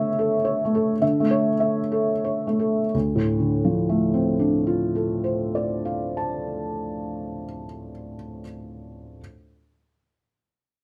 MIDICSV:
0, 0, Header, 1, 2, 480
1, 0, Start_track
1, 0, Key_signature, -1, "minor"
1, 0, Tempo, 546946
1, 893, Time_signature, 3, 2, 24, 8
1, 893, Tempo, 616650
1, 1853, Tempo, 674916
1, 7961, End_track
2, 0, Start_track
2, 0, Title_t, "Felt piano"
2, 0, Program_c, 0, 0
2, 0, Control_c, 0, 64, 127
2, 0, Note_on_c, 0, 50, 46
2, 0, Note_on_c, 0, 57, 41
2, 0, Note_on_c, 0, 73, 49
2, 0, Note_on_c, 0, 76, 46
2, 164, Note_on_c, 0, 69, 41
2, 311, Note_off_c, 0, 76, 0
2, 392, Note_off_c, 0, 73, 0
2, 392, Note_on_c, 0, 73, 43
2, 545, Note_off_c, 0, 69, 0
2, 568, Note_off_c, 0, 57, 0
2, 568, Note_on_c, 0, 57, 37
2, 655, Note_on_c, 0, 69, 46
2, 787, Note_off_c, 0, 73, 0
2, 828, Note_off_c, 0, 57, 0
2, 862, Note_off_c, 0, 50, 0
2, 890, Note_on_c, 0, 50, 45
2, 892, Note_on_c, 0, 76, 48
2, 908, Control_c, 0, 64, 0
2, 1033, Note_off_c, 0, 69, 0
2, 1037, Note_on_c, 0, 57, 38
2, 1055, Control_c, 0, 64, 127
2, 1119, Note_on_c, 0, 73, 49
2, 1261, Note_off_c, 0, 76, 0
2, 1289, Note_off_c, 0, 57, 0
2, 1347, Note_on_c, 0, 76, 43
2, 1500, Note_off_c, 0, 73, 0
2, 1593, Note_on_c, 0, 69, 36
2, 1745, Note_off_c, 0, 76, 0
2, 1848, Note_on_c, 0, 73, 40
2, 1993, Note_off_c, 0, 69, 0
2, 2010, Note_on_c, 0, 57, 32
2, 2096, Note_on_c, 0, 69, 35
2, 2241, Note_off_c, 0, 73, 0
2, 2274, Note_off_c, 0, 57, 0
2, 2311, Note_off_c, 0, 50, 0
2, 2341, Note_off_c, 0, 69, 0
2, 2345, Note_on_c, 0, 38, 33
2, 2355, Control_c, 0, 64, 0
2, 2496, Note_on_c, 0, 45, 36
2, 2502, Control_c, 0, 64, 127
2, 2667, Note_on_c, 0, 50, 36
2, 2845, Note_on_c, 0, 53, 36
2, 3021, Note_on_c, 0, 57, 32
2, 3195, Note_on_c, 0, 60, 34
2, 3377, Note_on_c, 0, 62, 30
2, 3571, Note_on_c, 0, 65, 32
2, 3775, Note_on_c, 0, 69, 27
2, 3978, Note_on_c, 0, 72, 27
2, 4199, Note_on_c, 0, 74, 27
2, 4414, Note_on_c, 0, 77, 25
2, 4640, Note_on_c, 0, 81, 26
2, 5545, Note_off_c, 0, 38, 0
2, 5697, Note_off_c, 0, 45, 0
2, 5867, Note_off_c, 0, 50, 0
2, 6046, Note_off_c, 0, 53, 0
2, 6222, Note_off_c, 0, 57, 0
2, 6240, Note_off_c, 0, 62, 0
2, 6241, Note_off_c, 0, 65, 0
2, 6241, Note_off_c, 0, 72, 0
2, 6242, Note_off_c, 0, 60, 0
2, 6243, Note_off_c, 0, 69, 0
2, 6244, Note_off_c, 0, 77, 0
2, 6246, Note_off_c, 0, 74, 0
2, 6246, Note_off_c, 0, 81, 0
2, 6798, Control_c, 0, 64, 0
2, 7961, End_track
0, 0, End_of_file